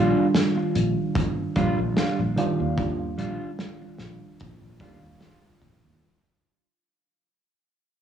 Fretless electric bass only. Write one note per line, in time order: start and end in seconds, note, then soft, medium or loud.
0.00 0.13 A#1 medium
0.75 0.94 A#1 loud
1.56 1.75 A#1 medium
1.79 1.94 A#1 loud
2.19 2.35 A#1 medium
2.60 3.14 D#2 medium
3.19 3.37 A#1 medium
4.00 4.18 A#1 loud
4.41 4.59 A#1 medium
4.62 4.78 A#1 medium
4.80 4.99 D#2 loud
5.03 5.18 D#2 medium
5.62 5.80 A#1 medium
5.84 5.99 D#2 medium